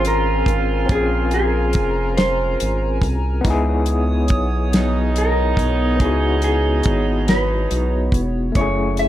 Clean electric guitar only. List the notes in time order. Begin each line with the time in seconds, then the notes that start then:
0.07 A#4
0.92 G#4
1.34 G#4
2.17 C5
5.18 A#4
6.01 G#4
6.44 G#4
7.29 B4
8.56 C#5
8.99 E5